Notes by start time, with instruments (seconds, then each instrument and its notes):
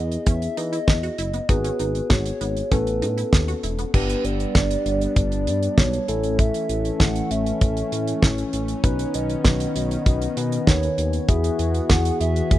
Already playing: analog synth bass E2, synth arpeggio sound B3, tine electric piano B3 E4 G#4, soft synth lead D#5
0.12 closed hi-hat
0.26 analog synth bass E2, synth arpeggio sound C#4, soft synth lead E5, kick, closed hi-hat
0.42 closed hi-hat
0.57 analog synth bass E3, synth arpeggio sound D#4, soft synth lead D#5, closed hi-hat
0.73 synth arpeggio sound E4, closed hi-hat
0.88 analog synth bass E2, kick, snare
1.03 synth arpeggio sound F#4, closed hi-hat
1.18 analog synth bass F#1, synth arpeggio sound E4, closed hi-hat
1.33 synth arpeggio sound B3, closed hi-hat
1.49 analog synth bass G#1, tine electric piano B3 F#4 G#4, synth arpeggio sound D#4, soft synth lead B4, kick, closed hi-hat
1.64 synth arpeggio sound C#4, closed hi-hat
1.79 analog synth bass G#1, synth arpeggio sound D#4, closed hi-hat
1.95 closed hi-hat
2.10 analog synth bass G#1, synth arpeggio sound F#4, soft synth lead C#5, kick, snare
2.26 closed hi-hat
2.41 analog synth bass G#1, synth arpeggio sound B3, closed hi-hat
2.57 closed hi-hat
2.71 analog synth bass A1, tine electric piano B3 C#4 A4, synth arpeggio sound C#4, soft synth lead B4, kick, closed hi-hat
2.87 closed hi-hat
3.02 analog synth bass A2, synth arpeggio sound D#4, closed hi-hat
3.18 synth arpeggio sound E4, closed hi-hat
3.33 analog synth bass D#2, kick, snare
3.48 synth arpeggio sound F#4, closed hi-hat
3.63 analog synth bass E1, synth arpeggio sound E4, closed hi-hat
3.79 synth arpeggio sound B3, closed hi-hat
3.94 analog synth bass G1, analog synth pad G3 B3 D4, tine electric piano B3 D4 G4, soft synth lead B4, kick, crash
4.10 closed hi-hat
4.25 analog synth bass G1, soft synth lead D5, closed hi-hat
4.40 closed hi-hat
4.55 analog synth bass G1, kick, snare
4.71 closed hi-hat
4.86 analog synth bass G1, closed hi-hat
5.01 closed hi-hat
5.16 analog synth bass G1, soft synth lead D5, kick, closed hi-hat
5.32 closed hi-hat
5.47 analog synth bass G2, closed hi-hat
5.63 closed hi-hat
5.78 analog synth bass B1, soft synth lead C#5, kick, snare
5.93 closed hi-hat
6.08 analog synth bass A1, analog synth pad E3 A3 C#4, tine electric piano C#4 E4 A4, closed hi-hat
6.24 closed hi-hat
6.39 soft synth lead E5, kick, closed hi-hat
6.54 closed hi-hat
6.69 analog synth bass A1, closed hi-hat
6.85 closed hi-hat
7.00 analog synth bass A1, soft synth lead F#5, kick, snare
7.16 closed hi-hat
7.31 analog synth bass A1, soft synth lead E5, closed hi-hat
7.46 closed hi-hat
7.61 analog synth bass A1, kick, closed hi-hat
7.77 closed hi-hat
7.92 analog synth bass A2, closed hi-hat
8.07 closed hi-hat
8.22 analog synth bass A1, kick, snare
8.38 closed hi-hat
8.53 analog synth bass A1, closed hi-hat
8.68 closed hi-hat
8.84 analog synth bass B1, analog synth pad D#3 B3, tine electric piano C#4 D#4 B4, soft synth lead B4, kick, closed hi-hat
8.99 closed hi-hat
9.14 analog synth bass B1, soft synth lead D#5, closed hi-hat
9.30 closed hi-hat
9.45 analog synth bass B1, kick, snare
9.60 closed hi-hat
9.76 analog synth bass B1, closed hi-hat
9.91 closed hi-hat
10.06 analog synth bass B1, soft synth lead D#5, kick, closed hi-hat
10.22 closed hi-hat
10.37 analog synth bass B2, tine electric piano C#4 D#4 B4, closed hi-hat
10.52 closed hi-hat
10.67 analog synth bass D#2, soft synth lead C#5, kick, snare
10.83 closed hi-hat
10.98 analog synth bass D#2, closed hi-hat
11.13 closed hi-hat
11.28 analog synth bass E2, analog synth pad E3 B3 F#4 G#4, tine electric piano E4 F#4 G#4, soft synth lead E5, kick, closed hi-hat
11.44 closed hi-hat
11.59 analog synth bass E2, closed hi-hat
11.74 closed hi-hat
11.90 analog synth bass E2, soft synth lead F#5, kick, snare
12.05 closed hi-hat
12.20 analog synth bass E2, soft synth lead E5, closed hi-hat
12.36 closed hi-hat
12.51 analog synth bass E2, kick, closed hi-hat